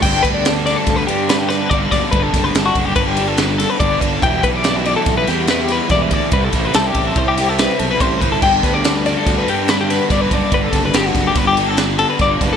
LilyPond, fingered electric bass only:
\new Staff \with { instrumentName = "Fingered electric bass" } { \clef bass \time 5/4 \key g \major \tempo 4 = 143 g,,8 d,4. d,8 g,4. g,,8 fis,,16 r16 | g,,8 fis,,8 g,,8 fis,,8 g,,2 g,,8 g,,8 | e,,8 b,,4. b,,8 e,4. e,,8 d,16 r16 | c,8 a,,8 c,8 a,,8 c,4. b,,8 a,,8 g,,8 |
g,,8 d,4. d,8 g,4. g,,8 fis,,16 r16 | g,,8 fis,,8 g,,8 fis,,8 g,,2 g,,8 fis,,8 | }